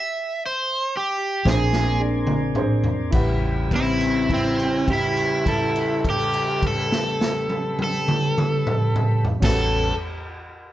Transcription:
Already playing: overdriven electric guitar E5
0.46 overdriven electric guitar C5
0.97 overdriven electric guitar G4
1.45 fingered electric bass A#1, tonewheel organ A#3 C4 D4 G#4, upright piano D4 G#4 C5, kick, snare
1.50 overdriven electric guitar G#4
1.73 snare
2.00 upright piano D4 G#4 D5
2.27 mid tom
2.55 upright piano D4 G#4 C5, mid tom
2.84 floor tom
3.11 fingered electric bass A1, tonewheel organ C#3 G3 B4, upright piano E4 G4 B4 F#5, kick, crash
3.71 electric slide guitar C4, kick, crash
3.76 overdriven electric guitar E4
4.01 crash
4.30 electric slide guitar E4, kick, crash
4.34 overdriven electric guitar C4
4.59 crash
4.88 electric slide guitar G4, kick, crash
4.93 overdriven electric guitar E4
5.17 crash
5.46 electric slide guitar A4, kick, crash
5.76 crash
6.04 kick, crash
6.10 overdriven electric guitar G4
6.33 crash
6.62 kick, crash
6.67 overdriven electric guitar A4
6.92 snare
7.21 snare
7.50 high tom
7.79 high tom
7.84 overdriven electric guitar A4
8.08 mid tom
8.38 mid tom
8.67 mid tom
8.96 mid tom
9.25 floor tom
9.40 fingered electric bass A1, tonewheel organ G3 B3 C#4 F#5, upright piano C#4 F#4 G4, electric slide guitar A4, kick, snare, crash
9.45 overdriven electric guitar A4, upright piano B4

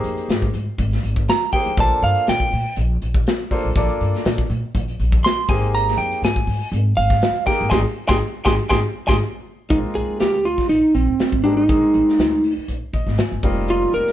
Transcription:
Already playing: grand piano A#3 D#4 G4 G#4 C5
0.04 upright bass F2, closed hi-hat
0.17 closed hi-hat
0.28 upright bass G#2, snare, closed hi-hat
0.42 kick, closed hi-hat
0.54 upright bass G#2, closed hi-hat
0.78 upright bass G#1, kick, closed hi-hat
0.91 snare, closed hi-hat
1.03 upright bass G#1, closed hi-hat
1.16 kick, closed hi-hat
1.28 lead electric guitar A#5, snare, closed hi-hat
1.41 closed hi-hat
1.53 grand piano A#3 D#4 G4 G#4 C5, lead electric guitar G5, kick, open hi-hat
1.66 upright bass F2, closed hi-hat
1.77 upright bass A#1, grand piano A#3 D4 F4 A4 C5, lead electric guitar A5, kick, closed hi-hat
2.02 upright bass G2, lead electric guitar F5, closed hi-hat
2.15 closed hi-hat
2.27 upright bass A#2, lead electric guitar G5, snare, closed hi-hat
2.40 kick
2.52 upright bass A#2, open hi-hat
2.76 upright bass A#1, closed hi-hat
3.02 upright bass A#1, closed hi-hat
3.14 kick, closed hi-hat
3.27 snare, closed hi-hat
3.39 closed hi-hat
3.51 grand piano A#3 D4 F4 A4 C5, kick, open hi-hat
3.64 upright bass A#1
3.76 upright bass A#1, grand piano A#3 D4 F4 A4 D5, kick, closed hi-hat
3.89 closed hi-hat
4.01 upright bass G2, closed hi-hat
4.14 snare, closed hi-hat
4.25 upright bass A#2, snare, closed hi-hat
4.38 kick, closed hi-hat
4.50 upright bass A#2, closed hi-hat
4.75 upright bass A#1, kick, closed hi-hat
4.88 closed hi-hat
5.00 upright bass A#1, closed hi-hat
5.12 kick, closed hi-hat
5.24 lead electric guitar C6, snare, closed hi-hat
5.37 closed hi-hat
5.49 upright bass G#1, grand piano A#3 D#4 G4 G#4 C5, lead electric guitar G#5, kick, snare, open hi-hat
5.62 closed hi-hat
5.74 lead electric guitar A#5, closed hi-hat
5.88 snare
5.97 upright bass F2, lead electric guitar G5, closed hi-hat
6.12 closed hi-hat
6.22 upright bass G#2, lead electric guitar G#5, snare, closed hi-hat
6.36 kick
6.47 upright bass G#2, open hi-hat
6.72 upright bass G#1, closed hi-hat
6.97 upright bass G#1, lead electric guitar F5, closed hi-hat
7.10 kick, snare, closed hi-hat
7.22 snare, closed hi-hat
7.35 closed hi-hat
7.46 grand piano A#3 D#4 G4 G#4 A#4, lead electric guitar G5, kick, snare, open hi-hat
7.61 upright bass G#1
7.70 upright bass G#1, grand piano D#4 G4 G#4, lead electric guitar G5 G#5 C6, kick, snare
8.08 upright bass G#1, grand piano D#4 G4 G#4, lead electric guitar G5 G#5 C6, kick, snare
8.45 upright bass G#1, grand piano D#4 G4 G#4, lead electric guitar G5 G#5 C6, kick, snare
8.70 upright bass G#1, grand piano D#4 G4 G#4, lead electric guitar G5 G#5 C6, kick, snare
9.07 upright bass G#1, grand piano D#4 G4 G#4, lead electric guitar G5 G#5 C6, kick, snare
9.70 upright bass A#1, grand piano G#3 A#3 C4 D#4 F4, lead electric guitar D#4, kick, closed hi-hat
9.95 upright bass A#1, lead electric guitar G#4, closed hi-hat
10.09 muted upright bass stroke
10.20 upright bass D2, lead electric guitar G4, snare, closed hi-hat
10.45 lead electric guitar F4, closed hi-hat
10.58 muted upright bass stroke, kick, snare
10.69 upright bass A#1, lead electric guitar D#4, closed hi-hat
10.94 upright bass A#1, lead electric guitar C4, closed hi-hat
11.07 upright bass G#1
11.19 snare, closed hi-hat
11.32 upright bass G#1, kick
11.44 grand piano G#3 A#3 C4 D#4 G4, lead electric guitar D4, closed hi-hat
11.57 lead electric guitar D#4
11.68 upright bass A#1, grand piano G#3 A#3 C4 D#4 G#4, kick, closed hi-hat
11.94 upright bass A#1, closed hi-hat
12.07 muted upright bass stroke, snare
12.18 upright bass D2, snare, closed hi-hat
12.44 open hi-hat
12.57 muted upright bass stroke
12.68 upright bass A#1, closed hi-hat
12.93 upright bass A#1, grand piano D#5, kick, closed hi-hat
13.07 upright bass G#1, snare
13.18 grand piano G#5, muted upright bass stroke, snare, closed hi-hat
13.32 upright bass G1
13.43 upright bass F1, grand piano G3 A#3 C4 D#4 F4 G5, kick, open hi-hat
13.68 lead electric guitar F4, closed hi-hat
13.93 upright bass F1, lead electric guitar A#4, closed hi-hat
14.06 muted upright bass stroke, snare

